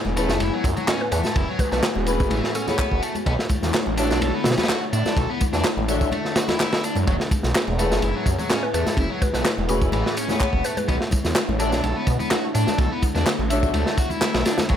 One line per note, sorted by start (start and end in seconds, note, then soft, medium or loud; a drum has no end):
0.00 3.23 A2 medium
0.00 3.23 B3 medium
0.00 1.32 E4 medium
0.00 3.23 G#5 medium
0.05 0.31 E1 loud
0.05 high conga medium
0.17 0.28 A3 medium
0.17 0.26 A3 medium
0.17 0.26 C#4 medium
0.17 0.26 E4 medium
0.17 0.26 G#4 medium
0.17 0.26 B4 medium
0.17 ride medium
0.17 tambourine medium
0.29 0.39 F#1 loud
0.29 0.38 A3 medium
0.29 snare medium
0.29 tambourine soft
0.40 0.51 F#1 medium
0.40 0.52 E4 medium
0.40 ride loud
0.40 tambourine soft
0.40 high conga medium
0.53 0.64 F#3 loud
0.64 0.75 F#2 medium
0.64 kick loud
0.64 ride medium
0.64 tambourine medium
0.77 0.86 F#3 medium
0.77 tambourine soft
0.77 high conga medium
0.77 low conga medium
0.88 1.00 C#4 loud
0.88 snare loud
0.88 clap loud
0.88 ride medium
0.88 tambourine soft
1.01 1.08 B4 medium
1.12 1.23 E2 loud
1.12 1.35 A3 medium
1.12 1.20 B4 medium
1.12 ride medium
1.12 tambourine medium
1.24 snare medium
1.24 tambourine soft
1.24 high conga medium
1.36 1.46 F#1 loud
1.36 1.47 E4 medium
1.36 3.25 F#4 medium
1.36 kick loud
1.36 ride loud
1.36 tambourine soft
1.48 1.59 F#3 medium
1.59 1.68 B4 medium
1.59 kick loud
1.59 ride medium
1.59 tambourine medium
1.59 high conga medium
1.72 1.82 B1 loud
1.72 1.81 A3 loud
1.72 1.79 B4 medium
1.72 snare soft
1.72 tambourine soft
1.83 snare loud
1.83 clap loud
1.83 ride medium
1.83 tambourine soft
1.95 2.22 E1 loud
1.95 high conga medium
2.06 2.21 A3 loud
2.06 2.21 C#4 medium
2.06 2.21 E4 medium
2.06 2.21 G#4 medium
2.06 2.21 B4 loud
2.06 ride medium
2.06 tambourine medium
2.20 2.29 F#1 loud
2.20 kick loud
2.20 tambourine soft
2.31 2.42 A1 loud
2.31 2.54 E3 medium
2.31 ride loud
2.31 tambourine soft
2.31 high conga medium
2.44 snare medium
2.55 2.66 C#4 loud
2.55 2.92 A4 medium
2.55 ride medium
2.55 tambourine medium
2.67 2.80 A3 medium
2.67 3.02 B3 medium
2.67 2.80 C#4 medium
2.67 2.80 E4 medium
2.67 2.80 G#4 medium
2.67 2.80 C#5 loud
2.67 snare soft
2.67 tambourine soft
2.67 high conga medium
2.67 low conga medium
2.78 kick medium
2.78 clap loud
2.78 ride medium
2.78 tambourine soft
2.92 3.01 F#1 medium
2.92 kick medium
3.02 3.13 A3 medium
3.02 ride medium
3.02 tambourine medium
3.15 ride soft
3.15 tambourine soft
3.15 high conga medium
3.26 3.37 B1 loud
3.26 7.04 D3 medium
3.26 7.04 A3 medium
3.26 3.33 B3 medium
3.26 7.04 E4 medium
3.26 5.15 C#5 medium
3.26 kick loud
3.26 ride medium
3.26 tambourine soft
3.39 snare medium
3.49 kick loud
3.49 ride medium
3.49 tambourine medium
3.49 high conga loud
3.63 3.72 E2 loud
3.63 snare soft
3.63 tambourine soft
3.74 snare loud
3.74 clap loud
3.74 ride medium
3.74 tambourine soft
3.86 4.12 A1 loud
3.86 high conga medium
3.97 4.06 D4 medium
3.97 4.09 D4 medium
3.97 4.06 F#4 medium
3.97 4.06 A4 medium
3.97 4.06 C#5 medium
3.97 4.06 E5 medium
3.97 ride medium
3.97 tambourine medium
4.10 4.20 B1 loud
4.10 4.20 D4 medium
4.10 snare medium
4.10 tambourine soft
4.21 4.32 B1 medium
4.21 4.33 A4 medium
4.21 ride loud
4.21 tambourine soft
4.21 high conga medium
4.34 4.45 B3 loud
4.44 4.56 B2 medium
4.44 snare loud
4.44 ride medium
4.44 tambourine medium
4.51 snare medium
4.51 ride medium
4.57 4.67 B3 medium
4.57 snare medium
4.57 ride medium
4.57 tambourine soft
4.57 high conga medium
4.57 low conga medium
4.63 snare medium
4.63 ride medium
4.69 4.81 F#4 loud
4.69 snare loud
4.69 clap loud
4.69 ride medium
4.69 tambourine soft
4.93 5.03 A2 loud
4.93 5.16 D4 medium
4.93 ride medium
4.93 tambourine medium
5.05 snare medium
5.05 tambourine soft
5.05 high conga medium
5.17 5.27 B1 loud
5.17 7.05 D4 medium
5.17 5.28 A4 medium
5.17 kick loud
5.17 ride medium
5.17 tambourine soft
5.30 5.40 B3 loud
5.41 kick medium
5.41 ride medium
5.41 tambourine medium
5.41 high conga medium
5.53 5.63 E2 loud
5.53 5.62 D4 loud
5.53 snare soft
5.53 tambourine soft
5.64 snare loud
5.64 clap loud
5.64 ride medium
5.64 tambourine soft
5.77 6.03 A1 loud
5.77 high conga medium
5.88 6.02 D4 loud
5.88 6.02 F#4 medium
5.88 6.02 A4 medium
5.88 6.02 C#5 medium
5.88 6.02 E5 loud
5.88 ride medium
5.88 tambourine medium
6.01 6.10 B1 loud
6.01 kick medium
6.01 tambourine soft
6.12 6.35 A3 medium
6.12 ride medium
6.12 tambourine soft
6.12 high conga medium
6.25 snare soft
6.36 6.47 F#4 medium
6.36 snare loud
6.36 ride medium
6.36 tambourine medium
6.48 6.82 E4 medium
6.48 snare loud
6.48 ride medium
6.48 tambourine soft
6.48 high conga medium
6.48 low conga medium
6.60 snare loud
6.60 clap loud
6.60 ride medium
6.60 tambourine soft
6.72 snare loud
6.72 ride medium
6.84 6.94 D4 medium
6.84 ride medium
6.84 tambourine medium
6.95 7.05 F#2 loud
6.95 ride soft
6.95 tambourine soft
6.95 high conga loud
7.07 7.18 F#1 loud
7.07 10.85 A2 medium
7.07 7.14 F#3 medium
7.07 10.85 B3 medium
7.07 14.77 E4 medium
7.07 10.85 G#4 medium
7.07 kick loud
7.07 ride medium
7.07 tambourine soft
7.20 snare medium
7.31 kick medium
7.31 ride medium
7.31 tambourine medium
7.31 high conga medium
7.43 7.53 B1 loud
7.43 snare soft
7.43 tambourine soft
7.54 snare loud
7.54 clap loud
7.54 ride medium
7.54 tambourine soft
7.68 7.93 E1 loud
7.68 high conga medium
7.79 7.88 A3 medium
7.79 7.90 A3 medium
7.79 7.88 C#4 medium
7.79 7.88 E4 medium
7.79 7.88 G#4 medium
7.79 7.88 B4 medium
7.79 ride medium
7.79 tambourine medium
7.91 8.01 F#1 loud
7.91 8.00 A3 medium
7.91 snare medium
7.91 tambourine soft
8.02 8.13 F#1 medium
8.02 8.14 E4 medium
8.02 ride medium
8.02 tambourine soft
8.02 high conga loud
8.15 8.26 F#3 loud
8.26 8.37 F#2 medium
8.26 kick loud
8.26 ride medium
8.26 tambourine medium
8.38 8.48 F#3 medium
8.38 tambourine soft
8.38 high conga medium
8.38 low conga medium
8.50 8.62 C#4 loud
8.50 snare loud
8.50 clap loud
8.50 ride medium
8.50 tambourine soft
8.63 8.70 B4 medium
8.74 8.85 E2 loud
8.74 8.97 A3 medium
8.74 8.82 B4 medium
8.74 ride medium
8.74 tambourine medium
8.86 snare soft
8.86 tambourine soft
8.86 high conga loud
8.97 9.08 F#1 loud
8.97 9.09 E4 medium
8.97 kick loud
8.97 ride medium
8.97 tambourine soft
9.10 9.21 F#3 loud
9.22 9.30 B4 medium
9.22 kick medium
9.22 ride medium
9.22 tambourine medium
9.22 high conga loud
9.33 9.44 B1 loud
9.33 9.43 A3 loud
9.33 9.41 B4 medium
9.33 snare soft
9.33 tambourine soft
9.45 snare loud
9.45 clap loud
9.45 ride loud
9.45 tambourine soft
9.58 9.83 E1 loud
9.58 high conga medium
9.69 9.83 A3 loud
9.69 9.83 C#4 medium
9.69 9.83 E4 medium
9.69 9.84 F#4 medium
9.69 9.83 G#4 medium
9.69 9.83 B4 loud
9.69 ride medium
9.69 tambourine medium
9.82 9.91 F#1 loud
9.82 kick loud
9.82 tambourine soft
9.92 10.04 A1 loud
9.92 10.16 E3 medium
9.92 ride medium
9.92 tambourine soft
9.92 high conga medium
10.06 snare medium
10.17 10.28 C#4 loud
10.17 ride medium
10.17 tambourine medium
10.28 10.42 A3 medium
10.28 10.63 B3 medium
10.28 10.42 C#4 medium
10.28 10.42 E4 medium
10.28 10.42 G#4 medium
10.28 10.42 C#5 loud
10.28 snare soft
10.28 tambourine soft
10.28 high conga medium
10.28 low conga medium
10.40 kick medium
10.40 clap loud
10.40 ride medium
10.40 tambourine soft
10.53 10.62 F#1 medium
10.53 kick medium
10.64 10.75 A3 medium
10.64 10.73 B4 medium
10.64 ride medium
10.64 tambourine medium
10.77 10.84 B4 medium
10.77 ride soft
10.77 tambourine soft
10.77 high conga loud
10.88 10.99 B1 loud
10.88 14.65 D3 medium
10.88 14.65 A3 medium
10.88 10.94 B3 medium
10.88 12.77 C#5 medium
10.88 kick loud
10.88 ride medium
10.88 tambourine soft
11.01 snare medium
11.11 kick loud
11.11 ride medium
11.11 tambourine medium
11.11 high conga loud
11.25 11.34 E2 loud
11.25 snare soft
11.25 tambourine soft
11.35 snare loud
11.35 clap loud
11.35 ride medium
11.35 tambourine soft
11.49 11.74 A1 loud
11.49 high conga medium
11.60 11.68 D4 medium
11.60 11.71 D4 medium
11.60 11.68 F#4 medium
11.60 11.68 A4 medium
11.60 11.68 C#5 medium
11.60 11.68 E5 medium
11.60 ride medium
11.60 tambourine medium
11.72 11.82 B1 loud
11.72 11.81 D4 medium
11.72 snare medium
11.72 tambourine soft
11.84 11.94 B1 medium
11.84 11.95 A4 medium
11.84 ride medium
11.84 tambourine soft
11.84 high conga loud
11.96 12.07 B3 loud
12.07 12.18 B2 medium
12.07 kick loud
12.07 ride medium
12.07 tambourine medium
12.20 12.29 B3 medium
12.20 tambourine soft
12.20 high conga medium
12.20 low conga medium
12.31 12.43 F#4 loud
12.31 snare loud
12.31 clap loud
12.31 ride medium
12.31 tambourine soft
12.55 12.66 A2 loud
12.55 12.78 D4 medium
12.55 ride medium
12.55 tambourine medium
12.67 snare medium
12.67 tambourine soft
12.67 high conga medium
12.78 12.89 B1 loud
12.78 14.77 B3 medium
12.78 12.90 A4 medium
12.78 kick loud
12.78 ride medium
12.78 tambourine soft
12.92 13.02 B3 loud
13.02 kick loud
13.02 ride medium
13.02 tambourine medium
13.02 high conga loud
13.15 13.25 E2 loud
13.15 13.24 D4 loud
13.15 snare soft
13.15 tambourine soft
13.26 snare loud
13.26 clap loud
13.26 ride medium
13.26 tambourine soft
13.39 13.65 A1 loud
13.39 high conga medium
13.50 13.64 D4 loud
13.50 13.64 F#4 medium
13.50 13.64 A4 medium
13.50 13.64 C#5 medium
13.50 13.64 E5 loud
13.50 ride medium
13.50 tambourine medium
13.63 13.72 B1 loud
13.63 kick loud
13.63 tambourine soft
13.74 13.85 D2 loud
13.74 13.97 A3 medium
13.74 ride medium
13.74 tambourine soft
13.74 high conga loud
13.86 snare medium
13.97 14.09 F#4 loud
13.97 kick loud
13.97 ride medium
13.97 tambourine medium
14.10 14.44 E4 medium
14.10 tambourine soft
14.10 high conga medium
14.10 low conga medium
14.21 snare loud
14.21 clap loud
14.21 ride medium
14.21 tambourine soft
14.34 14.44 B1 loud
14.34 snare loud
14.34 ride medium
14.46 14.56 D4 medium
14.46 snare loud
14.46 ride medium
14.46 tambourine medium
14.58 snare loud
14.58 ride medium
14.58 tambourine soft
14.58 high conga loud
14.69 14.77 F#1 loud
14.69 14.77 A2 medium
14.69 14.75 F#3 medium
14.69 kick loud
14.69 ride medium
14.69 tambourine soft